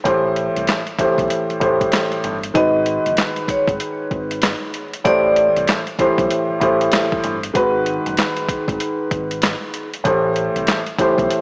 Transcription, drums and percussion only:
0.05 kick, closed hi-hat
0.36 closed hi-hat
0.56 closed hi-hat
0.67 snare, clap, closed hi-hat
0.87 closed hi-hat
0.98 kick, closed hi-hat
1.18 kick, closed hi-hat
1.30 closed hi-hat
1.50 closed hi-hat
1.61 kick, closed hi-hat
1.81 kick, closed hi-hat
1.92 snare, clap, closed hi-hat
2.12 closed hi-hat
2.24 closed hi-hat
2.43 closed hi-hat
2.55 kick, closed hi-hat
2.86 closed hi-hat
3.06 closed hi-hat
3.17 snare, clap, closed hi-hat
3.36 closed hi-hat
3.48 kick, closed hi-hat
3.68 kick, closed hi-hat
3.80 closed hi-hat
4.11 kick, closed hi-hat
4.31 closed hi-hat
4.42 snare, clap, closed hi-hat
4.74 closed hi-hat
4.93 closed hi-hat
5.05 kick, closed hi-hat
5.36 closed hi-hat
5.56 closed hi-hat
5.67 snare, clap, closed hi-hat
5.87 closed hi-hat
5.98 kick, closed hi-hat
6.18 kick, closed hi-hat
6.30 closed hi-hat
6.61 kick, closed hi-hat
6.81 closed hi-hat
6.92 snare, clap, closed hi-hat
7.12 kick
7.24 closed hi-hat
7.43 closed hi-hat
7.55 kick, closed hi-hat
7.86 closed hi-hat
8.06 closed hi-hat
8.17 snare, clap, closed hi-hat
8.36 closed hi-hat
8.48 kick, closed hi-hat
8.68 kick, closed hi-hat
8.80 closed hi-hat
9.11 kick, closed hi-hat
9.31 closed hi-hat
9.42 snare, clap, closed hi-hat
9.74 closed hi-hat
9.94 closed hi-hat
10.05 kick, closed hi-hat
10.36 closed hi-hat
10.56 closed hi-hat
10.67 snare, clap, closed hi-hat
10.87 closed hi-hat
10.99 kick, closed hi-hat
11.18 kick, closed hi-hat
11.30 closed hi-hat

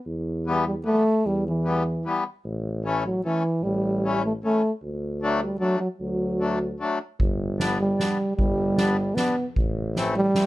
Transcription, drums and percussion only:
7.20 kick
7.60 snare
8.00 snare, ride
8.39 kick, ride
8.77 snare, ride
9.17 snare, ride
9.56 kick, ride
9.96 snare, ride
10.35 snare, ride

